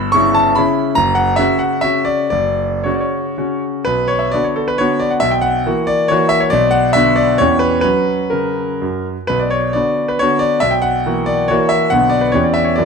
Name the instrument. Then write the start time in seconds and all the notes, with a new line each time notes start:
grand piano
Already playing: G1 B5
0.12 C#3 C#4 E4 C#6
0.34 A5
0.55 C#3 C#4 E4 B5
0.95 F#1 A#5
1.15 F#5
1.36 C#3 C#4 F#4 E5
1.59 F#5
1.81 C#3 C#4 F#4 E5
2.05 D5
2.30 F#1 D5
2.84 C#3 C#4 F#4 C#5
2.94 D5
3.00 C#5
3.38 C#3 C#4 F#4
3.85 B1 B4
4.08 C#5
4.19 E5
4.32 D3 B3 F#4 D5
4.44 C#5
4.56 A4
4.68 B4
4.78 D3 B3 F#4 C#5
5.00 D5
5.11 F#5
5.20 B1 E5
5.31 G5
5.41 F#5
5.66 E3 A#3 F#4
5.87 D5
6.08 E3 A#3 F#4 C#5
6.29 E5
6.40 C#5
6.50 B1 D5
6.71 F#5
6.93 D3 B3 F#4 E5
7.16 D5
7.38 E2 E3 C#4 G4 C#5
7.59 B4
7.81 F#3 C#4 F#4 B4
8.30 C#3 A#4
8.82 F#2
9.27 B1 B4
9.39 D5
9.50 C#5
9.73 D3 B3 F#4 D5
10.08 B4
10.19 D3 B3 F#4 C#5
10.39 D5
10.60 B1 E5
10.71 G5
10.82 F#5
11.06 E3 A#3 F#4
11.26 D5
11.48 E3 A#3 F#4 C#5
11.69 E5
11.90 B1 D3 B3 F#4 F#5
12.10 D5
12.21 B4
12.32 E2 E3 C#4 G4 C#5
12.43 D5
12.54 E5
12.64 C#5
12.76 F#2 E3 A#3 F#4 D5